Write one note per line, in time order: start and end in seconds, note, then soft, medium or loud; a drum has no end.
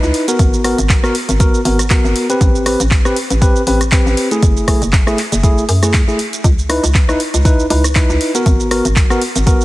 0.00 0.12 C#2 medium
0.00 0.25 D#4 medium
0.00 0.25 E4 medium
0.00 0.25 B4 loud
0.00 shaker soft
0.14 open hi-hat loud
0.28 0.62 B3 medium
0.28 0.62 F#4 medium
0.28 0.62 A#4 medium
0.28 closed hi-hat medium
0.28 shaker medium
0.39 0.74 G#1 loud
0.39 kick loud
0.39 closed hi-hat medium
0.39 shaker medium
0.54 shaker soft
0.64 0.77 B3 medium
0.64 0.78 F#4 medium
0.64 0.78 A#4 medium
0.64 cross-stick medium
0.64 open hi-hat loud
0.78 1.12 G#1 medium
0.78 closed hi-hat medium
0.78 shaker medium
0.89 kick loud
0.89 clap loud
0.89 shaker medium
1.03 1.14 B3 loud
1.03 1.14 F#4 medium
1.03 1.14 A#4 loud
1.03 cross-stick medium
1.03 shaker soft
1.15 open hi-hat loud
1.29 1.62 G#1 medium
1.29 closed hi-hat medium
1.29 shaker medium
1.40 1.60 B3 medium
1.40 1.60 F#4 medium
1.40 1.60 A#4 loud
1.40 kick loud
1.40 closed hi-hat medium
1.40 shaker medium
1.54 shaker soft
1.65 2.01 G#1 loud
1.65 1.78 B3 medium
1.65 1.78 F#4 medium
1.65 1.79 A#4 medium
1.65 open hi-hat loud
1.79 cross-stick medium
1.79 closed hi-hat medium
1.79 shaker medium
1.90 2.26 B3 medium
1.90 2.26 F#4 medium
1.90 2.27 A#4 loud
1.90 kick loud
1.90 clap loud
1.90 closed hi-hat medium
1.90 shaker medium
2.04 2.14 G#1 medium
2.04 shaker soft
2.16 open hi-hat loud
2.29 2.63 C4 medium
2.29 2.63 G4 medium
2.29 2.64 B4 medium
2.29 closed hi-hat medium
2.29 shaker medium
2.41 2.76 A1 loud
2.41 kick loud
2.41 closed hi-hat medium
2.41 shaker medium
2.55 shaker soft
2.66 2.79 C4 medium
2.66 2.79 G4 medium
2.66 2.79 B4 medium
2.66 cross-stick medium
2.66 open hi-hat loud
2.80 3.13 A1 medium
2.80 closed hi-hat medium
2.80 shaker medium
2.91 kick loud
2.91 clap loud
2.91 shaker medium
3.05 3.16 C4 loud
3.05 3.16 G4 medium
3.05 3.16 B4 loud
3.05 cross-stick medium
3.05 shaker soft
3.16 open hi-hat loud
3.30 3.64 A1 medium
3.30 closed hi-hat medium
3.30 shaker medium
3.41 3.61 C4 loud
3.41 3.61 G4 medium
3.41 3.62 B4 loud
3.41 kick loud
3.41 closed hi-hat medium
3.41 shaker medium
3.56 shaker soft
3.67 4.02 A1 medium
3.67 3.80 C4 medium
3.67 3.80 G4 medium
3.67 3.80 B4 medium
3.67 open hi-hat loud
3.81 cross-stick medium
3.81 closed hi-hat medium
3.81 shaker medium
3.92 4.28 C4 medium
3.92 4.28 G4 medium
3.92 4.28 B4 medium
3.92 kick loud
3.92 clap loud
3.92 closed hi-hat medium
3.92 shaker medium
4.06 4.15 A1 medium
4.06 shaker soft
4.17 open hi-hat loud
4.31 4.65 A3 medium
4.31 4.65 E4 medium
4.31 4.65 G#4 medium
4.31 closed hi-hat medium
4.31 shaker medium
4.42 4.78 F#1 loud
4.42 kick loud
4.42 closed hi-hat medium
4.42 shaker medium
4.57 shaker soft
4.68 4.81 A3 medium
4.68 4.81 E4 medium
4.68 4.81 G#4 medium
4.68 kick medium
4.68 cross-stick medium
4.68 open hi-hat loud
4.82 5.15 F#1 medium
4.82 closed hi-hat soft
4.82 shaker medium
4.93 kick loud
4.93 clap loud
4.93 shaker medium
5.07 5.17 A3 loud
5.07 5.18 E4 medium
5.07 5.18 G#4 loud
5.07 cross-stick medium
5.07 shaker soft
5.18 clap soft
5.18 open hi-hat loud
5.32 5.65 F#1 medium
5.32 closed hi-hat soft
5.32 shaker medium
5.43 5.63 A3 loud
5.43 5.63 E4 medium
5.43 5.63 G#4 loud
5.43 kick loud
5.43 closed hi-hat medium
5.43 shaker medium
5.58 shaker soft
5.69 6.09 F#2 medium
5.69 open hi-hat loud
5.82 6.01 A3 medium
5.82 6.01 E4 medium
5.82 6.01 G#4 medium
5.82 cross-stick medium
5.82 closed hi-hat soft
5.82 shaker medium
5.94 kick loud
5.94 clap loud
5.94 closed hi-hat medium
5.94 shaker medium
6.08 6.17 F#1 medium
6.08 6.18 A3 medium
6.08 6.18 E4 medium
6.08 6.19 G#4 medium
6.08 shaker soft
6.19 open hi-hat loud
6.33 closed hi-hat medium
6.33 shaker medium
6.44 6.80 C#2 loud
6.44 kick loud
6.44 closed hi-hat medium
6.44 shaker medium
6.59 shaker soft
6.69 6.83 D#4 medium
6.69 6.83 E4 medium
6.69 6.83 B4 medium
6.69 cross-stick medium
6.69 open hi-hat loud
6.83 7.17 C#2 medium
6.83 closed hi-hat soft
6.83 shaker medium
6.94 kick loud
6.94 clap loud
6.94 shaker medium
7.08 7.19 D#4 loud
7.08 7.19 E4 medium
7.08 7.19 B4 loud
7.08 cross-stick medium
7.08 shaker soft
7.20 open hi-hat loud
7.34 7.67 C#2 medium
7.34 closed hi-hat soft
7.34 shaker medium
7.45 7.65 D#4 loud
7.45 7.65 E4 medium
7.45 7.65 B4 loud
7.45 kick loud
7.45 closed hi-hat medium
7.45 shaker medium
7.60 shaker soft
7.70 8.06 C#2 loud
7.70 7.83 D#4 medium
7.70 7.84 E4 medium
7.70 7.84 B4 medium
7.70 open hi-hat loud
7.84 cross-stick medium
7.84 closed hi-hat soft
7.84 shaker medium
7.95 8.31 D#4 medium
7.95 8.31 E4 medium
7.95 8.32 B4 loud
7.95 kick loud
7.95 clap loud
7.95 closed hi-hat medium
7.95 shaker medium
8.10 8.19 C#2 medium
8.10 shaker soft
8.21 open hi-hat loud
8.34 8.68 B3 medium
8.34 8.69 F#4 medium
8.34 8.69 A#4 medium
8.34 closed hi-hat medium
8.34 shaker medium
8.46 8.81 G#1 loud
8.46 kick loud
8.46 closed hi-hat medium
8.46 shaker medium
8.60 shaker soft
8.71 8.84 B3 medium
8.71 8.84 F#4 medium
8.71 8.84 A#4 medium
8.71 cross-stick medium
8.71 open hi-hat loud
8.85 9.18 G#1 medium
8.85 closed hi-hat medium
8.85 shaker medium
8.96 kick loud
8.96 clap loud
8.96 shaker medium
9.10 9.21 B3 loud
9.10 9.21 F#4 medium
9.10 9.21 A#4 loud
9.10 cross-stick medium
9.10 shaker soft
9.22 open hi-hat loud
9.36 9.65 G#1 medium
9.36 closed hi-hat medium
9.36 shaker medium
9.46 9.65 B3 loud
9.46 9.65 F#4 medium
9.46 9.65 A#4 loud
9.46 kick loud
9.46 closed hi-hat medium
9.46 shaker medium
9.61 shaker soft